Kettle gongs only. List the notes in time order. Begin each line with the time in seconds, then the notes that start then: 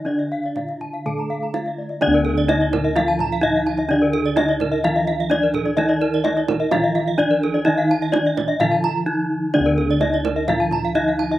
Already playing: D3
0.06 D4
0.57 D#4
1.06 D3
1.54 D#4
2.02 D4
2.07 D2
2.49 D#4
3.43 D#4
3.91 D4
4.38 D#4
4.84 D#3
5.32 D#4
5.79 D#4
6.26 D#4
6.73 D#3
7.20 D#4
7.66 D#4
8.14 D#4
8.61 D3
9.09 D#4
9.55 D4
9.60 D2
10.97 D#4